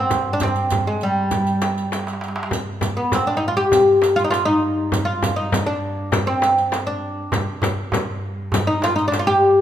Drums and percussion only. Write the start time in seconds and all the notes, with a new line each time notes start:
0.10 riq, frame drum, darbuka dum
0.40 riq, frame drum, darbuka dum
0.56 riq
0.70 riq, frame drum, darbuka dum
1.01 riq
1.31 riq, frame drum, darbuka dum
1.47 riq, darbuka ka
1.62 riq, darbuka tek, frame drum
1.78 riq, darbuka ka
1.92 riq, darbuka tek, frame drum
1.99 darbuka ka
2.07 riq, darbuka tek
2.13 darbuka ka
2.21 riq, darbuka tek
2.28 darbuka ka
2.36 darbuka tek
2.43 darbuka ka
2.51 riq, darbuka dum, frame drum
2.81 riq, frame drum, darbuka dum
3.12 riq, darbuka dum, frame drum
3.72 riq, darbuka dum, frame drum
4.02 riq, darbuka tek, frame drum
4.19 riq
4.32 riq, darbuka tek, frame drum
4.92 riq, frame drum, darbuka dum
5.23 riq, frame drum, darbuka dum
5.52 riq, darbuka dum, frame drum
6.12 riq, darbuka dum, frame drum
6.42 riq, darbuka tek, frame drum
6.58 riq
6.72 riq, darbuka tek, frame drum
6.88 darbuka ka
7.32 riq, darbuka dum, frame drum
7.62 riq, darbuka dum, frame drum
7.92 riq, darbuka dum, frame drum
8.52 riq, darbuka dum, frame drum
8.82 riq, darbuka tek, frame drum
8.99 riq
9.12 riq, darbuka tek, frame drum